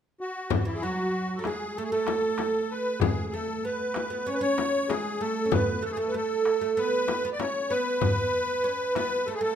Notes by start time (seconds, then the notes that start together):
0.20 F#4
0.50 E3 E4, frame drum, darbuka dum
0.58 F#4
0.65 E3 E4, darbuka ka
0.75 G#4
0.82 F#3 F#4
1.28 darbuka ka
1.36 F#3 A4
1.44 G#3 G#4, darbuka tek, frame drum
1.76 A3 A4, darbuka ka
1.84 G#4
1.91 A3 A4, darbuka ka
2.07 darbuka tek, frame drum
2.22 darbuka ka
2.38 darbuka tek, frame drum
2.71 B4
3.00 G#3 G#4, darbuka dum, frame drum
3.33 A3 A4
3.65 B3 B4
3.79 darbuka ka
3.94 darbuka tek, frame drum
4.10 B3
4.26 C#4 C#5, darbuka ka
4.34 B4
4.41 C#4 C#5, darbuka ka
4.58 darbuka tek, frame drum
4.74 darbuka ka
4.89 G#3 G#4, darbuka tek, frame drum
5.21 A3 A4
5.45 C#4
5.51 B3 B4, darbuka dum, frame drum
5.67 darbuka ka
5.82 A3 A4
5.92 G#4
5.97 A3 A4
6.07 B4
6.14 A3 A4
6.30 darbuka ka
6.45 darbuka tek
6.61 A3
6.77 B3 B4, darbuka ka
6.93 darbuka ka
7.08 darbuka tek, frame drum
7.24 B3, darbuka ka
7.32 D5
7.39 C#4 C#5, darbuka tek, frame drum
7.70 B3 B4
8.01 darbuka dum, frame drum
8.33 darbuka ka
8.64 C#4
8.95 B3 B4, darbuka tek, frame drum
9.26 A3 A4, darbuka ka
9.34 G#4
9.41 A3 A4, darbuka ka